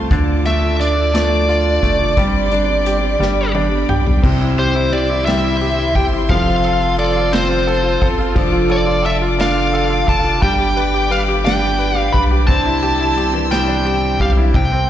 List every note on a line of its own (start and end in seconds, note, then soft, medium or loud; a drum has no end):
0.00 0.13 C3 medium
0.00 0.13 A3 medium
0.00 0.11 C4 soft
0.00 0.11 F4 medium
0.00 2.13 F4 medium
0.00 0.10 A4 medium
0.00 0.12 A4 medium
0.00 0.13 C5 soft
0.00 2.13 A5 medium
0.10 1.79 D2 loud
0.10 0.45 D3 medium
0.10 2.13 D3 medium
0.10 0.44 F3 medium
0.10 0.45 D4 medium
0.10 0.46 F4 medium
0.10 0.46 A4 medium
0.10 4.19 D5 medium
0.10 4.19 D6 medium
0.10 kick loud
0.10 closed hi-hat medium
0.45 0.63 F3 soft
0.45 1.12 A3 soft
0.45 0.63 D4 soft
0.45 0.62 F4 medium
0.45 0.61 A4 medium
0.45 0.80 E5 medium
0.45 closed hi-hat soft
0.62 0.97 D4 soft
0.62 0.97 F4 soft
0.62 0.96 A4 medium
0.81 2.14 D4 medium
0.81 1.15 D5 medium
0.81 closed hi-hat medium
0.97 1.13 D4 soft
0.97 1.13 F4 soft
0.97 1.13 A4 soft
1.13 1.48 D3 medium
1.13 1.46 F3 medium
1.13 1.81 A3 soft
1.13 1.47 D4 medium
1.13 1.47 F4 medium
1.13 1.48 A4 medium
1.13 3.52 D5 medium
1.13 snare medium
1.13 closed hi-hat medium
1.47 1.65 F3 medium
1.47 1.65 D4 medium
1.47 2.15 F4 soft
1.47 1.64 F4 medium
1.47 1.64 A4 medium
1.47 closed hi-hat soft
1.65 2.00 D4 soft
1.65 1.99 F4 soft
1.65 1.98 A4 soft
1.83 2.15 F1 medium
1.83 2.16 A3 soft
1.83 kick medium
1.83 closed hi-hat medium
2.00 2.16 D4 soft
2.00 2.17 F4 soft
2.00 2.17 A4 medium
2.16 3.16 G1 loud
2.16 2.51 G2 medium
2.16 2.51 D3 medium
2.16 2.49 G3 medium
2.16 3.17 G3 medium
2.16 2.50 C4 medium
2.16 2.50 D4 medium
2.16 4.21 G4 medium
2.16 2.50 G4 medium
2.16 3.19 C6 medium
2.16 kick loud
2.16 closed hi-hat medium
2.50 2.68 G3 medium
2.50 2.68 C4 medium
2.50 2.68 D4 medium
2.50 3.19 D4 soft
2.50 2.67 G4 medium
2.50 closed hi-hat soft
2.68 3.02 G3 soft
2.68 3.02 C4 medium
2.68 3.01 D4 medium
2.68 3.00 G4 medium
2.86 3.20 G4 medium
2.86 closed hi-hat medium
3.02 3.18 G3 soft
3.02 3.20 C4 soft
3.02 3.19 D4 soft
3.02 3.20 G4 medium
3.19 3.85 G1 loud
3.19 3.54 G2 medium
3.19 3.54 D3 medium
3.19 3.52 G3 medium
3.19 4.20 G3 medium
3.19 3.52 B3 medium
3.19 3.53 D4 medium
3.19 3.54 G4 medium
3.19 4.23 B5 medium
3.19 snare soft
3.53 3.71 G3 medium
3.53 3.71 B3 medium
3.53 4.21 D4 soft
3.53 3.70 D4 medium
3.53 3.69 G4 medium
3.53 3.87 D5 medium
3.53 high tom medium
3.70 4.06 G3 soft
3.70 4.05 B3 soft
3.70 4.05 D4 medium
3.70 4.04 G4 medium
3.89 4.21 B1 medium
3.89 4.22 G4 medium
3.89 4.21 G5 medium
3.89 mid tom medium
4.05 4.22 G3 soft
4.05 4.23 B3 medium
4.05 4.23 D4 medium
4.05 4.23 G4 medium
4.05 floor tom medium
4.23 5.91 C2 loud
4.23 4.92 C3 medium
4.23 6.25 C3 medium
4.23 4.90 G3 medium
4.23 4.92 C4 medium
4.23 4.92 E4 medium
4.23 6.28 G4 medium
4.23 4.92 G4 medium
4.23 8.32 C5 medium
4.23 6.28 E5 medium
4.23 8.32 C6 medium
4.23 kick loud
4.23 crash medium
4.41 4.73 E4 soft
4.58 4.91 G4 soft
4.58 4.94 C5 medium
4.58 ride soft
4.75 5.08 E4 medium
4.91 5.26 G3 medium
4.91 5.26 C4 medium
4.91 5.25 E4 medium
4.91 5.60 G4 medium
4.91 5.25 G4 medium
4.91 5.25 D5 medium
4.91 ride soft
5.10 5.42 E4 medium
5.26 5.96 C3 soft
5.26 5.95 G3 medium
5.26 6.27 G3 medium
5.26 5.96 C4 medium
5.26 5.94 E4 medium
5.26 5.93 G4 medium
5.26 5.97 E5 medium
5.26 snare loud
5.26 ride medium
5.44 5.77 E4 medium
5.61 5.94 G4 soft
5.61 ride soft
5.79 6.12 E4 medium
5.94 6.28 G1 medium
5.94 6.29 C4 soft
5.94 6.30 E4 soft
5.94 6.29 G4 soft
5.94 6.29 G4 medium
5.94 6.05 G5 medium
5.94 kick medium
5.94 ride soft
6.13 6.30 E4 soft
6.29 7.97 F1 loud
6.29 6.98 F3 medium
6.29 8.32 F3 medium
6.29 6.98 C4 medium
6.29 10.38 F4 medium
6.29 6.99 F4 medium
6.29 10.38 A4 medium
6.29 7.00 A4 medium
6.29 6.94 F5 loud
6.29 kick loud
6.29 ride medium
6.48 6.79 F4 soft
6.64 6.97 A4 medium
6.64 ride soft
6.80 7.15 F4 medium
6.98 7.33 F3 medium
6.98 7.33 C4 medium
6.98 7.33 F4 medium
6.98 7.66 A4 medium
6.98 7.32 A4 medium
6.98 7.34 D5 medium
6.98 ride medium
7.16 7.49 F4 medium
7.32 8.35 F3 medium
7.32 8.32 C4 medium
7.32 8.02 C4 medium
7.32 8.03 F4 medium
7.32 8.02 A4 medium
7.32 8.06 C5 medium
7.32 snare loud
7.32 ride medium
7.50 7.82 F4 medium
7.67 8.00 A4 medium
7.67 ride soft
7.84 8.17 F4 soft
8.01 8.34 G1 medium
8.01 8.35 C4 soft
8.01 8.35 F4 soft
8.01 8.35 A4 medium
8.01 8.36 A4 soft
8.01 kick medium
8.01 ride soft
8.19 8.35 F4 medium
8.35 10.04 F1 loud
8.35 10.38 F3 medium
8.35 9.04 F3 medium
8.35 9.05 D4 medium
8.35 9.05 F4 loud
8.35 9.05 A4 medium
8.35 14.50 D5 medium
8.35 12.44 D6 medium
8.35 kick loud
8.35 ride medium
8.52 8.85 F4 medium
8.70 9.01 A4 medium
8.70 9.06 D5 medium
8.70 ride soft
8.86 9.20 F4 medium
9.03 9.39 F3 medium
9.03 9.39 D4 medium
9.03 9.39 F4 medium
9.03 9.72 A4 medium
9.03 9.39 A4 medium
9.03 9.15 E5 medium
9.03 ride medium
9.22 9.54 F4 medium
9.38 10.09 F3 medium
9.38 10.39 D4 medium
9.38 10.09 D4 medium
9.38 10.07 F4 medium
9.38 10.06 A4 medium
9.38 10.11 F5 medium
9.38 snare loud
9.38 ride medium
9.55 9.88 F4 medium
9.73 10.05 A4 soft
9.73 ride soft
9.90 10.23 F4 soft
10.07 10.40 F1 medium
10.07 10.41 D4 soft
10.07 10.42 F4 soft
10.07 10.41 A4 medium
10.07 10.42 A4 medium
10.07 10.42 A5 medium
10.07 kick medium
10.07 ride medium
10.24 10.41 F4 soft
10.42 12.10 G1 loud
10.42 11.11 G2 medium
10.42 11.45 D3 medium
10.42 12.44 G3 medium
10.42 11.10 G3 medium
10.42 11.10 D4 medium
10.42 11.11 G4 medium
10.42 12.47 G4 medium
10.42 11.11 B4 medium
10.42 11.13 G5 medium
10.42 12.46 B5 medium
10.42 kick loud
10.42 ride medium
10.59 10.93 G4 soft
10.77 11.09 B4 medium
10.77 ride soft
10.94 11.27 G4 soft
11.10 11.44 G3 medium
11.10 11.44 G4 medium
11.10 11.77 B4 soft
11.10 11.43 B4 medium
11.10 11.21 F5 medium
11.10 ride medium
11.28 11.60 G4 medium
11.44 12.14 G2 medium
11.44 12.47 D3 soft
11.44 12.15 G3 medium
11.44 12.45 D4 medium
11.44 12.14 D4 medium
11.44 12.13 G4 medium
11.44 12.12 B4 medium
11.44 11.98 G5 loud
11.44 snare loud
11.44 ride medium
11.62 11.94 G4 soft
11.79 12.12 B4 soft
11.79 ride soft
11.95 12.29 G4 medium
11.95 12.16 F5 loud
12.13 12.46 B1 medium
12.13 12.47 G3 soft
12.13 12.47 D4 soft
12.13 12.47 G4 soft
12.13 12.48 B4 soft
12.13 12.47 B4 soft
12.13 12.22 B5 medium
12.13 kick medium
12.13 ride soft
12.31 12.48 G4 medium
12.47 14.16 C2 loud
12.47 13.16 C3 medium
12.47 13.17 E3 medium
12.47 13.15 G3 medium
12.47 14.50 C4 medium
12.47 13.16 C4 medium
12.47 13.16 D4 medium
12.47 14.52 G4 medium
12.47 13.17 G4 medium
12.47 13.51 A5 loud
12.47 14.53 C6 medium
12.47 14.52 E6 medium
12.47 kick loud
12.47 ride medium
12.65 12.98 E4 medium
12.83 13.16 G4 medium
12.83 ride soft
13.00 14.33 E4 medium
13.16 13.51 G3 medium
13.16 13.50 C4 medium
13.16 13.50 D4 medium
13.16 13.84 G4 medium
13.16 13.49 G4 medium
13.16 ride soft
13.34 14.51 E3 medium
13.50 14.20 C3 medium
13.50 14.20 E3 medium
13.50 14.51 G3 medium
13.50 14.20 G3 medium
13.50 14.21 C4 medium
13.50 14.19 D4 medium
13.50 14.19 G4 medium
13.50 14.22 G5 medium
13.50 snare loud
13.50 ride medium
13.67 14.51 D4 medium
13.86 14.19 G4 medium
13.86 ride soft
14.20 14.52 B1 medium
14.20 14.55 G3 soft
14.20 14.55 C4 soft
14.20 14.55 D4 medium
14.20 14.54 G4 medium
14.20 14.30 F5 medium
14.20 kick medium
14.20 ride soft
14.37 14.54 E4 medium
14.54 14.90 C2 loud
14.54 14.90 C3 medium
14.54 14.90 G5 medium
14.54 kick loud
14.54 ride medium
14.72 14.90 C4 soft